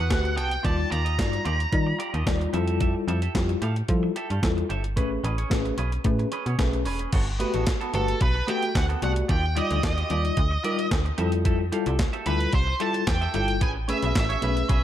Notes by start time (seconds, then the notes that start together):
Already playing: E2 F#5
0.10 D2 A3 F#4 G4 B4, kick, snare, clap, closed hi-hat
0.24 muted clean electric guitar stroke, closed hi-hat
0.36 C2 B3 F#4 A4 G5, closed hi-hat
0.51 muted clean electric guitar stroke, closed hi-hat
0.63 D#2 G3 D#4 F4 G4 D5 A5, kick, closed hi-hat
0.78 muted clean electric guitar stroke
0.90 D#2 F4 G4 D5 A#5, closed hi-hat
1.05 F4 G4 D#5, closed hi-hat
1.18 G2 G3 D#4 F4 D5, kick, snare, clap, closed hi-hat
1.32 muted clean electric guitar stroke, closed hi-hat
1.45 D#2 F4 G4 D5, closed hi-hat
1.59 muted clean electric guitar stroke, closed hi-hat
1.72 D#3 G3 D#4 F4 D5, muted clean electric guitar stroke, kick, closed hi-hat
1.87 muted clean electric guitar stroke
1.99 F4 G4 D5, closed hi-hat
2.13 D#2 F4 G4 D#5, closed hi-hat
2.26 D#2 G3 D#4 F4 D5, kick, snare, clap, closed hi-hat
2.40 muted clean electric guitar stroke, closed hi-hat
2.53 F2 G3 E4 F4 G4 A4 E5, closed hi-hat
2.67 G4 A4 E5, closed hi-hat
2.80 G4 A4 E5, kick, closed hi-hat
2.95 muted clean electric guitar stroke
3.08 F2 G4 A4 E5, closed hi-hat
3.22 G4 A4 E5, closed hi-hat
3.35 F2 G3 E4 F4 G4, kick, snare, clap, closed hi-hat
3.49 muted clean electric guitar stroke, closed hi-hat
3.62 A2 G4 A4 F5, closed hi-hat
3.76 muted clean electric guitar stroke, closed hi-hat
3.88 F3 G3 E4 F4 A4, muted clean electric guitar stroke, kick, closed hi-hat
4.03 muted clean electric guitar stroke
4.16 G4 A4 E5, closed hi-hat
4.30 G2 G4 A4 F5, closed hi-hat
4.42 E2 G3 E4 F4 A4, kick, snare, clap, closed hi-hat
4.57 muted clean electric guitar stroke, closed hi-hat
4.69 G1 G4 A4 E5, closed hi-hat
4.84 muted clean electric guitar stroke, closed hi-hat
4.96 A1 A3 C#4 G#4 B4, kick, closed hi-hat
5.11 muted clean electric guitar stroke
5.23 A1 C#4 G#4 B4, closed hi-hat
5.38 C#4 G#4 C#5, closed hi-hat
5.50 A1 A3 C#4 G#4 B4, kick, snare, clap, closed hi-hat
5.65 muted clean electric guitar stroke, closed hi-hat
5.78 B1 C#4 G#4 B4, closed hi-hat
5.92 muted clean electric guitar stroke, closed hi-hat
6.04 A2 A3 C#4 G#4 B4, muted clean electric guitar stroke, kick, closed hi-hat
6.19 muted clean electric guitar stroke, closed hi-hat
6.32 C#4 G#4 B4, closed hi-hat
6.46 B2 C#4 G#4 C#5, closed hi-hat
6.58 B1 A3 C#4 G#4 B4, kick, snare, clap, closed hi-hat
6.73 muted clean electric guitar stroke, closed hi-hat
6.85 E1 C#4 G#4 B4, open hi-hat
6.99 C#4 G#4 B4, closed hi-hat
7.13 G1 B3 F#4 A4, kick, closed hi-hat, crash
7.27 muted clean electric guitar stroke
7.39 A3 B3 F#4 G4 B4, closed hi-hat
7.54 A1 B3 F#4 A4, closed hi-hat
7.67 kick, snare, clap, closed hi-hat
7.81 B3 F#4 A4, closed hi-hat
7.93 G1 A3 B3 F#4 G4 A4 B4, closed hi-hat
8.08 muted clean electric guitar stroke, closed hi-hat
8.21 B1 B4, muted clean electric guitar stroke, kick, closed hi-hat
8.34 muted clean electric guitar stroke
8.47 A3 B3 F#4 G4 A4 G5, closed hi-hat
8.62 muted clean electric guitar stroke, closed hi-hat
8.75 D2 F#5, muted clean electric guitar stroke, kick, snare, clap, closed hi-hat
8.89 B3 F#4 A4, closed hi-hat
9.02 C2 A3 B3 F#4 G4 A4 D5 F#5, closed hi-hat
9.16 muted clean electric guitar stroke, closed hi-hat
9.28 D#2 F4 G4 D5 G5, kick, closed hi-hat
9.43 muted clean electric guitar stroke
9.55 G3 D#4 F4 G4 D5 D#5, closed hi-hat
9.70 D2 F4 G4 D5, closed hi-hat
9.83 D#2 D#5, kick, snare, clap, closed hi-hat
9.97 F4 G4 D#5, closed hi-hat
10.09 D#2 G3 D#4 F4 G4 D5, closed hi-hat
10.24 muted clean electric guitar stroke, closed hi-hat
10.37 D2, kick, closed hi-hat
10.51 muted clean electric guitar stroke
10.63 G3 D#4 F4 G4 A#4 D5, closed hi-hat
10.78 muted clean electric guitar stroke, closed hi-hat
10.91 D2, muted clean electric guitar stroke, kick, snare, clap, closed hi-hat
11.05 muted clean electric guitar stroke, closed hi-hat
11.18 F2 G3 E4 F4 G4 A4 E5, closed hi-hat
11.32 muted clean electric guitar stroke, closed hi-hat
11.45 G4 A4 E5, kick, closed hi-hat
11.60 muted clean electric guitar stroke
11.72 G3 E4 F4 G4 A4 F5, closed hi-hat
11.86 C2 G4 A4 E5, closed hi-hat
11.99 kick, snare, clap, closed hi-hat
12.13 G4 A4 E5, closed hi-hat
12.26 D2 G3 E4 F4 G4 A4 B4 E5, closed hi-hat
12.40 muted clean electric guitar stroke, closed hi-hat
12.53 C2 C5, muted clean electric guitar stroke, kick, closed hi-hat
12.67 muted clean electric guitar stroke
12.80 G3 E4 F4 G4 A4 E5 A5, closed hi-hat
12.94 muted clean electric guitar stroke, closed hi-hat
13.07 E2 G5, muted clean electric guitar stroke, kick, snare, clap, closed hi-hat
13.21 G4 A4 E5, closed hi-hat
13.34 G1 G3 E4 F4 G4 A4 E5 G5, closed hi-hat
13.48 muted clean electric guitar stroke, closed hi-hat
13.61 A1 C#4 G#4 B4 G#5, kick, closed hi-hat
13.76 muted clean electric guitar stroke
13.88 A3 C#4 G#4 B4 E5, closed hi-hat
14.02 B1 C#4 G#4 B4, closed hi-hat
14.15 A1 E5, kick, snare, clap, closed hi-hat
14.29 C#4 G#4 C#5, closed hi-hat
14.42 B1 A3 C#4 G#4 B4, closed hi-hat
14.56 muted clean electric guitar stroke, closed hi-hat
14.69 B1 C#4 G#4 B4, kick, closed hi-hat